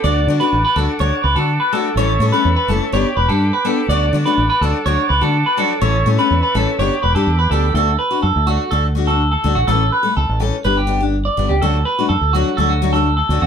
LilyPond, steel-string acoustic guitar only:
\new Staff \with { instrumentName = "Steel-string acoustic guitar" } { \time 4/4 \key d \major \tempo 4 = 124 <a d' fis'>16 r16 <a d' fis'>16 <d' fis'>16 r8 <a d' fis'>16 r16 <a d' fis'>16 r8 <d' fis'>16 r8 <a d' fis'>16 r16 | <e a cis' a'>16 r16 <e a cis' a'>16 <a cis' a'>16 r8 <e a cis' a'>16 r16 <b d' g'>16 r8 <d' g'>16 r8 <b d' g'>16 r16 | <fis a d' fis'>16 r16 <fis a d' fis'>16 <a d' fis'>16 r8 <fis d' fis'>16 r16 <fis a d' fis'>16 r8 <a d' fis'>16 r8 <fis a d' fis'>16 r16 | <e a cis' a'>16 r16 <e a cis' a'>16 <a cis' a'>16 r8 <e a cis' a'>16 r16 <b d' g'>16 r8 <d' g'>16 r8 <b d' g'>16 r16 |
<a d' fis'>16 r8 <d' fis'>16 r8 <a d' fis'>16 r16 <a d' fis'>16 r16 <a d' fis'>16 <d' fis'>16 r8 <a d' fis'>16 r16 | <e a cis' a'>16 r8 <a a'>16 r8 <e a cis' a'>16 r16 <b d' g'>16 r16 <b d' g'>16 <d' g'>16 r8 <b d' g'>16 r16 | <fis a d' fis'>16 r8 <a d' fis'>16 r8 <fis a d' fis'>16 r16 <fis a d' fis'>16 r16 <fis a d' fis'>16 <a d' fis'>16 r8 <fis a d' fis'>16 r16 | }